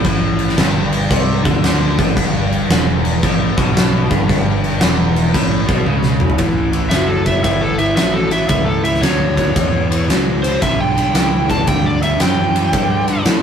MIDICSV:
0, 0, Header, 1, 5, 480
1, 0, Start_track
1, 0, Tempo, 528169
1, 50, Time_signature, 4, 2, 24, 8
1, 12200, End_track
2, 0, Start_track
2, 0, Title_t, "Electric slide guitar"
2, 0, Program_c, 0, 29
2, 6267, Note_on_c, 0, 76, 77
2, 6432, Note_on_c, 0, 69, 77
2, 6433, Note_off_c, 0, 76, 0
2, 6596, Note_off_c, 0, 69, 0
2, 6600, Note_on_c, 0, 76, 78
2, 6750, Note_off_c, 0, 76, 0
2, 6761, Note_on_c, 0, 76, 98
2, 6918, Note_on_c, 0, 69, 81
2, 6921, Note_off_c, 0, 76, 0
2, 7073, Note_on_c, 0, 76, 87
2, 7079, Note_off_c, 0, 69, 0
2, 7225, Note_off_c, 0, 76, 0
2, 7235, Note_on_c, 0, 76, 91
2, 7397, Note_on_c, 0, 69, 67
2, 7398, Note_off_c, 0, 76, 0
2, 7559, Note_off_c, 0, 69, 0
2, 7562, Note_on_c, 0, 76, 78
2, 7702, Note_off_c, 0, 76, 0
2, 7713, Note_on_c, 0, 76, 89
2, 7860, Note_on_c, 0, 69, 76
2, 7877, Note_off_c, 0, 76, 0
2, 8029, Note_on_c, 0, 76, 72
2, 8030, Note_off_c, 0, 69, 0
2, 8194, Note_on_c, 0, 73, 78
2, 8195, Note_off_c, 0, 76, 0
2, 9134, Note_off_c, 0, 73, 0
2, 9480, Note_on_c, 0, 72, 88
2, 9641, Note_off_c, 0, 72, 0
2, 9650, Note_on_c, 0, 76, 103
2, 9806, Note_off_c, 0, 76, 0
2, 9819, Note_on_c, 0, 79, 82
2, 10436, Note_off_c, 0, 79, 0
2, 10455, Note_on_c, 0, 81, 75
2, 10609, Note_off_c, 0, 81, 0
2, 10622, Note_on_c, 0, 79, 95
2, 10772, Note_off_c, 0, 79, 0
2, 10779, Note_on_c, 0, 74, 84
2, 10931, Note_off_c, 0, 74, 0
2, 10936, Note_on_c, 0, 76, 89
2, 11089, Note_off_c, 0, 76, 0
2, 11100, Note_on_c, 0, 79, 96
2, 12027, Note_off_c, 0, 79, 0
2, 12200, End_track
3, 0, Start_track
3, 0, Title_t, "Overdriven electric guitar"
3, 0, Program_c, 1, 29
3, 47, Note_on_c, 1, 45, 119
3, 520, Note_on_c, 1, 43, 101
3, 523, Note_off_c, 1, 45, 0
3, 999, Note_off_c, 1, 43, 0
3, 1001, Note_on_c, 1, 48, 95
3, 1300, Note_off_c, 1, 48, 0
3, 1303, Note_on_c, 1, 50, 102
3, 1783, Note_off_c, 1, 50, 0
3, 1801, Note_on_c, 1, 45, 103
3, 1960, Note_on_c, 1, 43, 118
3, 1963, Note_off_c, 1, 45, 0
3, 2436, Note_off_c, 1, 43, 0
3, 2436, Note_on_c, 1, 40, 96
3, 2917, Note_off_c, 1, 40, 0
3, 2932, Note_on_c, 1, 45, 107
3, 3242, Note_off_c, 1, 45, 0
3, 3242, Note_on_c, 1, 47, 98
3, 3712, Note_off_c, 1, 47, 0
3, 3719, Note_on_c, 1, 43, 99
3, 3863, Note_off_c, 1, 43, 0
3, 3874, Note_on_c, 1, 43, 108
3, 4352, Note_off_c, 1, 43, 0
3, 4356, Note_on_c, 1, 40, 99
3, 4837, Note_off_c, 1, 40, 0
3, 4838, Note_on_c, 1, 45, 98
3, 5143, Note_off_c, 1, 45, 0
3, 5146, Note_on_c, 1, 47, 99
3, 5315, Note_off_c, 1, 47, 0
3, 5323, Note_on_c, 1, 49, 110
3, 5792, Note_off_c, 1, 49, 0
3, 5795, Note_on_c, 1, 45, 82
3, 5803, Note_on_c, 1, 52, 92
3, 6085, Note_off_c, 1, 45, 0
3, 6089, Note_off_c, 1, 52, 0
3, 6108, Note_on_c, 1, 52, 80
3, 6112, Note_on_c, 1, 45, 66
3, 6260, Note_off_c, 1, 45, 0
3, 6265, Note_off_c, 1, 52, 0
3, 6271, Note_on_c, 1, 45, 67
3, 6272, Note_on_c, 1, 54, 76
3, 6563, Note_off_c, 1, 45, 0
3, 6563, Note_off_c, 1, 54, 0
3, 6586, Note_on_c, 1, 45, 76
3, 6588, Note_on_c, 1, 54, 79
3, 6744, Note_off_c, 1, 45, 0
3, 6745, Note_off_c, 1, 54, 0
3, 6758, Note_on_c, 1, 52, 95
3, 6759, Note_on_c, 1, 45, 73
3, 7046, Note_off_c, 1, 52, 0
3, 7047, Note_off_c, 1, 45, 0
3, 7082, Note_on_c, 1, 45, 70
3, 7084, Note_on_c, 1, 52, 69
3, 7233, Note_off_c, 1, 45, 0
3, 7234, Note_off_c, 1, 52, 0
3, 7250, Note_on_c, 1, 45, 81
3, 7256, Note_on_c, 1, 54, 89
3, 7533, Note_off_c, 1, 45, 0
3, 7536, Note_off_c, 1, 54, 0
3, 7561, Note_on_c, 1, 45, 75
3, 7564, Note_on_c, 1, 54, 79
3, 7706, Note_off_c, 1, 45, 0
3, 7714, Note_off_c, 1, 54, 0
3, 7717, Note_on_c, 1, 45, 81
3, 7727, Note_on_c, 1, 52, 89
3, 8007, Note_off_c, 1, 45, 0
3, 8012, Note_off_c, 1, 52, 0
3, 8033, Note_on_c, 1, 45, 75
3, 8043, Note_on_c, 1, 52, 75
3, 8183, Note_off_c, 1, 45, 0
3, 8194, Note_off_c, 1, 52, 0
3, 8194, Note_on_c, 1, 45, 72
3, 8200, Note_on_c, 1, 54, 82
3, 8485, Note_off_c, 1, 45, 0
3, 8488, Note_off_c, 1, 54, 0
3, 8504, Note_on_c, 1, 45, 67
3, 8512, Note_on_c, 1, 54, 73
3, 8665, Note_off_c, 1, 45, 0
3, 8668, Note_off_c, 1, 54, 0
3, 8676, Note_on_c, 1, 45, 72
3, 8686, Note_on_c, 1, 52, 89
3, 8967, Note_off_c, 1, 45, 0
3, 8972, Note_off_c, 1, 52, 0
3, 8998, Note_on_c, 1, 45, 63
3, 8998, Note_on_c, 1, 52, 78
3, 9148, Note_off_c, 1, 45, 0
3, 9152, Note_off_c, 1, 52, 0
3, 9159, Note_on_c, 1, 45, 83
3, 9163, Note_on_c, 1, 54, 97
3, 9448, Note_off_c, 1, 45, 0
3, 9450, Note_off_c, 1, 54, 0
3, 9483, Note_on_c, 1, 45, 84
3, 9486, Note_on_c, 1, 54, 85
3, 9634, Note_off_c, 1, 45, 0
3, 9635, Note_off_c, 1, 54, 0
3, 9641, Note_on_c, 1, 43, 85
3, 9649, Note_on_c, 1, 50, 91
3, 9929, Note_off_c, 1, 43, 0
3, 9933, Note_off_c, 1, 50, 0
3, 9953, Note_on_c, 1, 43, 72
3, 9960, Note_on_c, 1, 50, 73
3, 10109, Note_off_c, 1, 43, 0
3, 10112, Note_off_c, 1, 50, 0
3, 10126, Note_on_c, 1, 43, 62
3, 10135, Note_on_c, 1, 52, 82
3, 10412, Note_off_c, 1, 43, 0
3, 10416, Note_off_c, 1, 52, 0
3, 10449, Note_on_c, 1, 43, 78
3, 10453, Note_on_c, 1, 52, 89
3, 10594, Note_off_c, 1, 43, 0
3, 10599, Note_off_c, 1, 52, 0
3, 10605, Note_on_c, 1, 43, 80
3, 10612, Note_on_c, 1, 50, 91
3, 10891, Note_off_c, 1, 43, 0
3, 10894, Note_off_c, 1, 50, 0
3, 10917, Note_on_c, 1, 43, 67
3, 10920, Note_on_c, 1, 50, 66
3, 11071, Note_off_c, 1, 43, 0
3, 11072, Note_off_c, 1, 50, 0
3, 11086, Note_on_c, 1, 43, 89
3, 11088, Note_on_c, 1, 52, 101
3, 11371, Note_off_c, 1, 43, 0
3, 11372, Note_off_c, 1, 52, 0
3, 11401, Note_on_c, 1, 43, 72
3, 11403, Note_on_c, 1, 52, 89
3, 11552, Note_off_c, 1, 43, 0
3, 11554, Note_off_c, 1, 52, 0
3, 11572, Note_on_c, 1, 43, 76
3, 11583, Note_on_c, 1, 50, 112
3, 11854, Note_off_c, 1, 43, 0
3, 11859, Note_off_c, 1, 50, 0
3, 11890, Note_on_c, 1, 43, 75
3, 11901, Note_on_c, 1, 50, 72
3, 12037, Note_off_c, 1, 43, 0
3, 12042, Note_off_c, 1, 50, 0
3, 12051, Note_on_c, 1, 43, 74
3, 12060, Note_on_c, 1, 52, 70
3, 12200, Note_off_c, 1, 43, 0
3, 12200, Note_off_c, 1, 52, 0
3, 12200, End_track
4, 0, Start_track
4, 0, Title_t, "Fingered electric bass"
4, 0, Program_c, 2, 33
4, 40, Note_on_c, 2, 33, 90
4, 491, Note_off_c, 2, 33, 0
4, 524, Note_on_c, 2, 31, 115
4, 973, Note_off_c, 2, 31, 0
4, 1004, Note_on_c, 2, 36, 94
4, 1298, Note_off_c, 2, 36, 0
4, 1327, Note_on_c, 2, 38, 98
4, 1771, Note_off_c, 2, 38, 0
4, 1805, Note_on_c, 2, 33, 96
4, 1959, Note_off_c, 2, 33, 0
4, 1966, Note_on_c, 2, 31, 83
4, 2413, Note_off_c, 2, 31, 0
4, 2451, Note_on_c, 2, 28, 99
4, 2896, Note_off_c, 2, 28, 0
4, 2936, Note_on_c, 2, 33, 97
4, 3224, Note_off_c, 2, 33, 0
4, 3251, Note_on_c, 2, 35, 102
4, 3693, Note_off_c, 2, 35, 0
4, 3735, Note_on_c, 2, 31, 101
4, 3883, Note_off_c, 2, 31, 0
4, 3902, Note_on_c, 2, 31, 88
4, 4342, Note_off_c, 2, 31, 0
4, 4382, Note_on_c, 2, 28, 103
4, 4822, Note_off_c, 2, 28, 0
4, 4861, Note_on_c, 2, 33, 98
4, 5147, Note_off_c, 2, 33, 0
4, 5168, Note_on_c, 2, 35, 82
4, 5317, Note_off_c, 2, 35, 0
4, 5323, Note_on_c, 2, 37, 87
4, 5772, Note_off_c, 2, 37, 0
4, 5809, Note_on_c, 2, 33, 81
4, 6272, Note_off_c, 2, 33, 0
4, 6278, Note_on_c, 2, 30, 98
4, 6749, Note_off_c, 2, 30, 0
4, 6766, Note_on_c, 2, 31, 85
4, 7234, Note_off_c, 2, 31, 0
4, 7238, Note_on_c, 2, 33, 88
4, 7710, Note_off_c, 2, 33, 0
4, 7723, Note_on_c, 2, 37, 86
4, 8190, Note_off_c, 2, 37, 0
4, 8195, Note_on_c, 2, 38, 100
4, 8669, Note_off_c, 2, 38, 0
4, 8689, Note_on_c, 2, 40, 84
4, 9156, Note_off_c, 2, 40, 0
4, 9161, Note_on_c, 2, 37, 83
4, 9632, Note_off_c, 2, 37, 0
4, 9653, Note_on_c, 2, 35, 86
4, 10116, Note_off_c, 2, 35, 0
4, 10121, Note_on_c, 2, 37, 98
4, 10592, Note_off_c, 2, 37, 0
4, 10613, Note_on_c, 2, 38, 94
4, 11078, Note_off_c, 2, 38, 0
4, 11092, Note_on_c, 2, 42, 83
4, 11557, Note_off_c, 2, 42, 0
4, 11570, Note_on_c, 2, 43, 72
4, 12036, Note_off_c, 2, 43, 0
4, 12046, Note_on_c, 2, 45, 94
4, 12200, Note_off_c, 2, 45, 0
4, 12200, End_track
5, 0, Start_track
5, 0, Title_t, "Drums"
5, 40, Note_on_c, 9, 49, 71
5, 43, Note_on_c, 9, 36, 101
5, 131, Note_off_c, 9, 49, 0
5, 134, Note_off_c, 9, 36, 0
5, 352, Note_on_c, 9, 49, 57
5, 443, Note_off_c, 9, 49, 0
5, 446, Note_on_c, 9, 38, 31
5, 523, Note_on_c, 9, 49, 85
5, 527, Note_off_c, 9, 38, 0
5, 527, Note_on_c, 9, 38, 105
5, 614, Note_off_c, 9, 49, 0
5, 618, Note_off_c, 9, 38, 0
5, 840, Note_on_c, 9, 49, 63
5, 931, Note_off_c, 9, 49, 0
5, 1006, Note_on_c, 9, 36, 97
5, 1011, Note_on_c, 9, 49, 80
5, 1097, Note_off_c, 9, 36, 0
5, 1102, Note_off_c, 9, 49, 0
5, 1321, Note_on_c, 9, 36, 105
5, 1321, Note_on_c, 9, 49, 62
5, 1412, Note_off_c, 9, 36, 0
5, 1412, Note_off_c, 9, 49, 0
5, 1488, Note_on_c, 9, 49, 80
5, 1491, Note_on_c, 9, 38, 101
5, 1578, Note_off_c, 9, 49, 0
5, 1582, Note_off_c, 9, 38, 0
5, 1806, Note_on_c, 9, 36, 102
5, 1815, Note_on_c, 9, 49, 61
5, 1897, Note_off_c, 9, 36, 0
5, 1906, Note_off_c, 9, 49, 0
5, 1970, Note_on_c, 9, 36, 104
5, 1977, Note_on_c, 9, 49, 84
5, 2061, Note_off_c, 9, 36, 0
5, 2068, Note_off_c, 9, 49, 0
5, 2294, Note_on_c, 9, 49, 58
5, 2385, Note_off_c, 9, 49, 0
5, 2455, Note_on_c, 9, 49, 69
5, 2459, Note_on_c, 9, 38, 118
5, 2546, Note_off_c, 9, 49, 0
5, 2550, Note_off_c, 9, 38, 0
5, 2770, Note_on_c, 9, 49, 63
5, 2861, Note_off_c, 9, 49, 0
5, 2934, Note_on_c, 9, 49, 80
5, 2937, Note_on_c, 9, 36, 96
5, 3025, Note_off_c, 9, 49, 0
5, 3028, Note_off_c, 9, 36, 0
5, 3251, Note_on_c, 9, 36, 105
5, 3259, Note_on_c, 9, 49, 56
5, 3342, Note_off_c, 9, 36, 0
5, 3349, Note_off_c, 9, 49, 0
5, 3423, Note_on_c, 9, 49, 78
5, 3427, Note_on_c, 9, 38, 114
5, 3514, Note_off_c, 9, 49, 0
5, 3517, Note_off_c, 9, 38, 0
5, 3734, Note_on_c, 9, 36, 112
5, 3742, Note_on_c, 9, 49, 57
5, 3825, Note_off_c, 9, 36, 0
5, 3833, Note_off_c, 9, 49, 0
5, 3902, Note_on_c, 9, 36, 106
5, 3906, Note_on_c, 9, 49, 73
5, 3993, Note_off_c, 9, 36, 0
5, 3997, Note_off_c, 9, 49, 0
5, 4216, Note_on_c, 9, 49, 61
5, 4307, Note_off_c, 9, 49, 0
5, 4368, Note_on_c, 9, 49, 74
5, 4372, Note_on_c, 9, 38, 118
5, 4459, Note_off_c, 9, 49, 0
5, 4462, Note_off_c, 9, 38, 0
5, 4692, Note_on_c, 9, 49, 60
5, 4783, Note_off_c, 9, 49, 0
5, 4857, Note_on_c, 9, 36, 110
5, 4859, Note_on_c, 9, 49, 90
5, 4948, Note_off_c, 9, 36, 0
5, 4950, Note_off_c, 9, 49, 0
5, 5168, Note_on_c, 9, 36, 96
5, 5168, Note_on_c, 9, 49, 58
5, 5259, Note_off_c, 9, 36, 0
5, 5259, Note_off_c, 9, 49, 0
5, 5330, Note_on_c, 9, 48, 62
5, 5421, Note_off_c, 9, 48, 0
5, 5477, Note_on_c, 9, 38, 55
5, 5568, Note_off_c, 9, 38, 0
5, 5635, Note_on_c, 9, 45, 99
5, 5722, Note_on_c, 9, 43, 88
5, 5726, Note_off_c, 9, 45, 0
5, 5801, Note_on_c, 9, 51, 90
5, 5807, Note_on_c, 9, 36, 97
5, 5813, Note_off_c, 9, 43, 0
5, 5892, Note_off_c, 9, 51, 0
5, 5898, Note_off_c, 9, 36, 0
5, 6118, Note_on_c, 9, 51, 66
5, 6209, Note_off_c, 9, 51, 0
5, 6280, Note_on_c, 9, 51, 82
5, 6283, Note_on_c, 9, 38, 100
5, 6371, Note_off_c, 9, 51, 0
5, 6374, Note_off_c, 9, 38, 0
5, 6596, Note_on_c, 9, 51, 67
5, 6599, Note_on_c, 9, 36, 82
5, 6687, Note_off_c, 9, 51, 0
5, 6690, Note_off_c, 9, 36, 0
5, 6764, Note_on_c, 9, 36, 98
5, 6764, Note_on_c, 9, 51, 87
5, 6854, Note_off_c, 9, 51, 0
5, 6855, Note_off_c, 9, 36, 0
5, 7076, Note_on_c, 9, 51, 60
5, 7167, Note_off_c, 9, 51, 0
5, 7242, Note_on_c, 9, 51, 77
5, 7246, Note_on_c, 9, 38, 107
5, 7333, Note_off_c, 9, 51, 0
5, 7337, Note_off_c, 9, 38, 0
5, 7554, Note_on_c, 9, 51, 67
5, 7645, Note_off_c, 9, 51, 0
5, 7715, Note_on_c, 9, 51, 86
5, 7719, Note_on_c, 9, 36, 113
5, 7806, Note_off_c, 9, 51, 0
5, 7810, Note_off_c, 9, 36, 0
5, 8041, Note_on_c, 9, 51, 61
5, 8127, Note_on_c, 9, 38, 30
5, 8132, Note_off_c, 9, 51, 0
5, 8208, Note_on_c, 9, 51, 92
5, 8212, Note_off_c, 9, 38, 0
5, 8212, Note_on_c, 9, 38, 96
5, 8299, Note_off_c, 9, 51, 0
5, 8303, Note_off_c, 9, 38, 0
5, 8519, Note_on_c, 9, 36, 67
5, 8523, Note_on_c, 9, 51, 66
5, 8610, Note_off_c, 9, 36, 0
5, 8613, Note_off_c, 9, 51, 0
5, 8689, Note_on_c, 9, 36, 118
5, 8689, Note_on_c, 9, 51, 93
5, 8780, Note_off_c, 9, 36, 0
5, 8780, Note_off_c, 9, 51, 0
5, 9013, Note_on_c, 9, 51, 75
5, 9104, Note_off_c, 9, 51, 0
5, 9179, Note_on_c, 9, 51, 88
5, 9182, Note_on_c, 9, 38, 98
5, 9270, Note_off_c, 9, 51, 0
5, 9273, Note_off_c, 9, 38, 0
5, 9490, Note_on_c, 9, 51, 76
5, 9580, Note_off_c, 9, 51, 0
5, 9651, Note_on_c, 9, 51, 96
5, 9653, Note_on_c, 9, 36, 102
5, 9742, Note_off_c, 9, 51, 0
5, 9744, Note_off_c, 9, 36, 0
5, 9975, Note_on_c, 9, 51, 67
5, 10066, Note_off_c, 9, 51, 0
5, 10132, Note_on_c, 9, 51, 94
5, 10136, Note_on_c, 9, 38, 113
5, 10223, Note_off_c, 9, 51, 0
5, 10227, Note_off_c, 9, 38, 0
5, 10448, Note_on_c, 9, 36, 82
5, 10453, Note_on_c, 9, 51, 73
5, 10539, Note_off_c, 9, 36, 0
5, 10544, Note_off_c, 9, 51, 0
5, 10609, Note_on_c, 9, 51, 91
5, 10613, Note_on_c, 9, 36, 108
5, 10699, Note_off_c, 9, 51, 0
5, 10704, Note_off_c, 9, 36, 0
5, 10929, Note_on_c, 9, 51, 61
5, 11020, Note_off_c, 9, 51, 0
5, 11087, Note_on_c, 9, 51, 83
5, 11090, Note_on_c, 9, 38, 102
5, 11178, Note_off_c, 9, 51, 0
5, 11181, Note_off_c, 9, 38, 0
5, 11412, Note_on_c, 9, 51, 66
5, 11503, Note_off_c, 9, 51, 0
5, 11569, Note_on_c, 9, 51, 88
5, 11572, Note_on_c, 9, 36, 109
5, 11660, Note_off_c, 9, 51, 0
5, 11663, Note_off_c, 9, 36, 0
5, 11885, Note_on_c, 9, 51, 59
5, 11976, Note_off_c, 9, 51, 0
5, 12046, Note_on_c, 9, 51, 88
5, 12049, Note_on_c, 9, 38, 112
5, 12136, Note_off_c, 9, 51, 0
5, 12140, Note_off_c, 9, 38, 0
5, 12200, End_track
0, 0, End_of_file